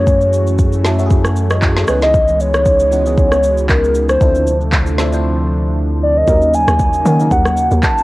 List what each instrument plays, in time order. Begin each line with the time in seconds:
Already playing: sub bass F#2, analog synth pad E3 A3 C#4 F#4, fm electric piano F#3 A3 C#4 E4 G#4, soft synth lead C#5
0.07 kick, shaker
0.21 shaker
0.33 shaker
0.47 shaker
0.59 kick, shaker
0.73 shaker
0.84 fm electric piano F#3 A3 C#4 E4 A4, snare, shaker
0.98 fm electric piano F#3 A3 C#4 E4 F#4, shaker
1.06 fm electric piano G#4
1.10 kick, shaker
1.24 cross-stick, shaker
1.36 shaker
1.50 fm electric piano D#5, cross-stick, shaker
1.62 fm electric piano C#5, kick, clap, shaker
1.76 fm electric piano A4, snare, shaker
1.87 sub bass C#2, analog synth pad C#3 E3 G#3 B3, fm electric piano D#3 B3 C#4 D#4 G#4, soft synth lead B4, cross-stick, shaker
1.93 fm electric piano E3
2.02 soft synth lead D#5, snare, shaker
2.14 kick, shaker
2.28 shaker
2.40 soft synth lead C#5, shaker
2.54 cross-stick, shaker
2.66 kick, shaker
2.80 shaker
2.91 fm electric piano E3 B3 C#4 D#4 F#4, shaker
3.05 fm electric piano E3 B3 C#4 D#4 G#4, shaker
3.17 soft synth lead C#5, kick, shaker
3.32 cross-stick, shaker
3.43 shaker
3.57 shaker
3.69 soft synth lead A#4, kick, clap, shaker
3.84 shaker
3.95 shaker
4.09 soft synth lead C5, cross-stick, shaker
4.20 sub bass D2, analog synth pad C3 F3 A3 D4, fm electric piano F3 C4 D4 E4 A4, kick, shaker
4.35 shaker
4.47 shaker
4.61 shaker
4.72 kick, clap, shaker
4.87 shaker
4.98 fm electric piano F3 C4 D4 E4 A4, snare, shaker
5.12 fm electric piano F3 C4 D4 E4 C5, shaker
6.03 soft synth lead D5
6.17 soft synth lead D#5
6.27 log drum bass D#2, analog synth pad C#3 F#3 A#3 D#4, fm electric piano F#3 A#3 C#4 D#4 A#4, kick, shaker
6.42 shaker
6.54 soft synth lead G#5, shaker
6.68 log drum bass D#2, cross-stick, shaker
6.79 kick, shaker
6.93 shaker
7.05 log drum bass D#3, fm electric piano F#3 A#3 C#4 D#4 F#4, shaker
7.19 fm electric piano F#3 A#3 C#4 D#4 A#4, shaker
7.31 log drum bass D#2, soft synth lead F#5, kick, shaker
7.45 cross-stick, shaker
7.57 shaker
7.71 log drum bass D#2, shaker
7.83 soft synth lead A5, kick, clap, shaker
7.98 shaker